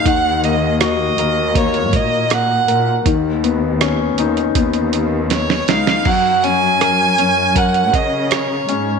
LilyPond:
<<
  \new Staff \with { instrumentName = "Violin" } { \time 4/4 \key fis \major \tempo 4 = 80 fis''8 dis''8 dis''4 cis''8 dis''8 fis''8. r16 | r2. cis''8 eis''8 | fis''8 gis''4. fis''8 dis''8 cis''8. r16 | }
  \new Staff \with { instrumentName = "Grand piano" } { \time 4/4 \key fis \major dis8 ais8 fis'8 ais'8 ais4. ais'8 | dis8 b8 cis'8 dis'8 b4. dis'8 | fis8 cis'8 ais'8 cis'8 ais'4. cis'8 | }
  \new Staff \with { instrumentName = "Cello section" } { \clef bass \time 4/4 \key fis \major dis,4. dis,4 ais,4 ais,8 | dis,4. dis,8 dis,4. cis,8 | fis,4. fis,4 cis4 gis,8 | }
  \new DrumStaff \with { instrumentName = "Drums" } \drummode { \time 4/4 <hh bd>8 hh8 <hh ss>8 hh8 <hh bd>16 hh16 <hh bd>8 <hh ss>8 hh8 | <hh bd>8 hh8 <hh ss>8 hh16 hh16 <hh bd>16 hh16 hh8 <hh sn>16 sn16 <hh sn>16 sn16 | <cymc bd>8 hh8 <hh ss>8 hh8 <hh bd>16 hh16 <hh bd>8 <hh ss>8 hh8 | }
>>